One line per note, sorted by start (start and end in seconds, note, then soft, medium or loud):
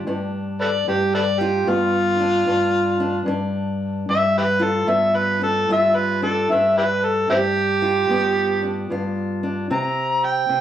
0.00 1.44 B3 medium
0.07 0.87 G2 medium
0.07 2.19 D4 medium
0.61 0.70 A4 medium
0.61 0.70 B4 medium
0.61 0.87 D5 medium
0.88 1.67 G2 medium
0.88 1.14 G4 medium
1.15 1.23 A4 medium
1.15 1.23 B4 medium
1.15 1.41 D5 loud
1.39 3.29 F4 medium
1.39 1.70 G4 medium
1.67 2.47 G2 medium
1.67 4.63 B3 medium
1.67 3.25 F4 loud
2.19 2.47 D4 medium
2.47 3.26 G2 medium
2.47 3.00 D4 medium
3.00 3.27 D4 medium
3.26 4.08 G2 medium
3.26 5.40 D4 medium
4.09 4.87 G2 medium
4.09 4.36 E5 loud
4.38 4.45 E4 medium
4.38 4.44 G4 medium
4.38 4.65 B4 loud
4.60 5.69 F4 medium
4.60 4.91 A4 medium
4.87 5.68 G2 medium
4.87 6.46 B3 medium
4.87 5.18 E5 medium
5.16 5.42 B4 medium
5.42 6.21 D4 medium
5.42 5.69 A4 loud
5.69 6.46 G2 medium
5.69 6.47 F4 medium
5.69 5.97 E5 medium
5.96 6.22 B4 medium
6.22 6.47 D4 medium
6.22 6.53 A4 medium
6.51 7.28 G2 medium
6.51 8.61 D4 medium
6.51 6.77 E5 medium
6.78 6.85 E4 medium
6.78 6.85 G4 medium
6.78 7.06 B4 medium
7.05 7.30 A4 medium
7.30 8.08 G2 medium
7.30 7.38 C4 medium
7.30 7.36 E4 medium
7.30 8.87 G4 loud
7.82 8.90 F4 medium
8.09 8.89 G2 medium
8.09 9.68 B3 medium
8.62 9.42 D4 medium
8.90 9.67 G2 medium
8.90 9.68 F4 medium
9.43 9.68 D4 medium
9.70 10.48 C3 medium
9.70 10.61 C4 medium
9.70 10.26 A#5 loud
10.25 10.61 G5 loud
10.49 10.61 C3 medium